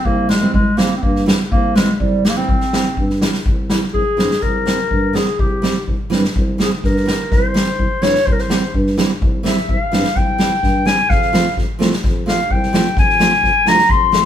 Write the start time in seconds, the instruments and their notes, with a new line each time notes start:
0.05 tuba C2, clarinet A#3, kick
0.29 clarinet G#3, muted nylon-string guitar stroke, snare
0.41 nylon-string guitar E3 G3 C4
0.53 tuba C2, clarinet G#3, kick
0.77 nylon-string guitar E3 G3 C4, clarinet A#3, snare
0.97 clarinet C4
1.02 tuba G2, clarinet A#3, kick
1.16 snare
1.26 nylon-string guitar E3 G3 C4, snare
1.51 tuba C2, clarinet A#3, kick
1.76 nylon-string guitar E3 G3 C4, clarinet G#3, snare
1.94 clarinet G#3
2.00 tuba C2, clarinet G3, kick
2.25 clarinet A#3, muted nylon-string guitar stroke, snare
2.36 nylon-string guitar E3 G3 C4, clarinet C4
2.49 tuba C2, kick
2.61 snare
2.73 nylon-string guitar E3 G3 C4, snare
2.97 tuba G2, kick
3.10 snare
3.22 nylon-string guitar E3 G3 C4, snare
3.34 snare
3.46 tuba C2, kick
3.70 nylon-string guitar E3 G3 C4, clarinet E4, snare
3.83 snare
3.94 tuba C2, clarinet G#4, kick
4.17 tuba G2, nylon-string guitar E3 G3 C4, snare
4.31 snare
4.42 tuba C2, clarinet A#4, kick
4.66 nylon-string guitar E3 G3 C4, snare
4.91 tuba G2, kick
5.13 nylon-string guitar E3 G3 C4, clarinet G#4, snare
5.39 tuba C2, clarinet G4, kick
5.62 nylon-string guitar E3 G3 C4, snare
5.88 tuba C2, kick
6.10 tuba G2, nylon-string guitar E3 G3 C4, snare
6.24 snare
6.36 tuba C2, kick
6.58 nylon-string guitar E3 G3 C4, clarinet G#4, snare
6.84 tuba G2, clarinet A#4, kick, snare
6.96 snare
7.05 nylon-string guitar E3 G3 C4, snare
7.31 tuba C2, clarinet C5, kick, snare
7.54 nylon-string guitar E3 G3 C4, snare
7.68 snare
7.79 tuba C2, kick
8.02 tuba G2, nylon-string guitar E3 G3 C4, clarinet C#5, snare
8.15 snare
8.26 tuba C2, clarinet C5, kick
8.32 clarinet A#4
8.39 clarinet C5, snare
8.50 nylon-string guitar E3 G3 C4, snare
8.74 tuba G2, kick
8.87 snare
8.97 nylon-string guitar E3 G3 C4, snare
9.22 tuba C2, kick
9.43 nylon-string guitar E3 G3 C4, clarinet E5, snare
9.57 snare
9.69 tuba C2, clarinet F5, kick
9.92 tuba G2, nylon-string guitar E3 G3 C4, snare
10.04 snare
10.16 tuba C2, clarinet G5, kick
10.38 nylon-string guitar E3 G3 C4, snare
10.63 tuba G2, kick, snare
10.85 nylon-string guitar E3 G3 C4, clarinet G#5, snare
11.10 tuba F2, clarinet F5, kick, snare
11.22 snare
11.33 nylon-string guitar F3 A3 C4, snare
11.46 snare
11.57 tuba F2, kick, snare
11.79 tuba C2, nylon-string guitar F3 A3 C4, snare
11.93 snare
12.04 tuba F2, kick, snare
12.26 nylon-string guitar F3 A3 C4, clarinet F5, snare
12.51 tuba C2, clarinet G5, kick
12.63 snare
12.73 nylon-string guitar F3 A3 C4, snare
12.97 tuba F2, clarinet G#5, kick, snare
13.09 snare
13.19 nylon-string guitar F3 A3 C4, snare
13.33 snare
13.43 tuba F2, kick, snare
13.65 tuba C2, nylon-string guitar F3 A3 D4, clarinet A#5, snare
13.78 snare
13.90 tuba F2, clarinet C6, kick
14.12 nylon-string guitar F3 A3 C4, snare